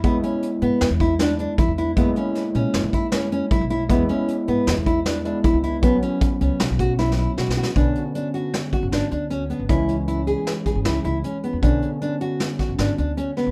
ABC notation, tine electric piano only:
X:1
M:5/4
L:1/8
Q:1/4=155
K:Bdor
V:1 name="Tine electric piano"
[G,B,E]8- [G,B,E]2 | [G,^A,E]8- [G,A,E]2 | [G,B,E]6- [G,B,E] [G,B,E]3 | [F,B,C]8- [F,B,C]2 |
[D,B,C]8- [D,B,C]2 | [E,G,C]8- [E,G,C]2 | [D,B,C]8- [D,B,C]2 |]